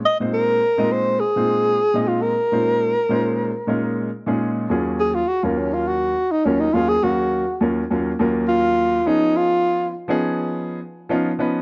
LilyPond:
<<
  \new Staff \with { instrumentName = "Alto saxophone" } { \time 4/4 \key bes \minor \tempo 4 = 103 ees''8 bes'4 c''8 aes'4. f'16 bes'16~ | bes'2~ bes'8. r4 r16 | \key ees \minor r8 aes'16 f'16 ges'16 bes16 des'16 f'16 ges'8. ees'16 des'16 ees'16 f'16 aes'16 | ges'4 r4. f'4 ees'8 |
f'4 r2. | }
  \new Staff \with { instrumentName = "Grand piano" } { \time 4/4 \key bes \minor r16 <bes, aes c' ees' f' c''>8. r16 <bes, aes c' ees' f' ees''>8. r16 <bes, aes c' ees' f' c''>8. r16 <bes, aes c' ees' f' ees''>8. | r16 <bes, aes des' ees' f' c''>8. r16 <bes, aes des' ees' f' c''>8. r16 <bes, aes des' ees' f' bes'>8. r16 <bes, aes des' ees' f' aes'>8. | \key ees \minor <ees, ges bes des' f' aes'>8. r8 <ees, ges bes des' f' bes'>4~ <ees, ges bes des' f' bes'>16 r8 <ees, ges bes des' f' bes'>16 r16 <ees, ges bes des' f' aes'>16 r16 | <ees, ges bes des' bes' f''>8. r16 <ees, ges bes des' f' bes'>16 r16 <ees, ges bes des' f' bes'>16 r16 <ees, ges bes des' f' bes'>4~ <ees, ges bes des' f' bes'>16 r16 <f ces' des' ees' aes'>8~ |
<f ces' des' ees' aes'>4 r16 <f ces' des' ees' aes'>4~ <f ces' des' ees' aes'>16 r8 <f ces' des' ees' f'>16 r16 <f ces' des' ees' ces''>16 r16 | }
>>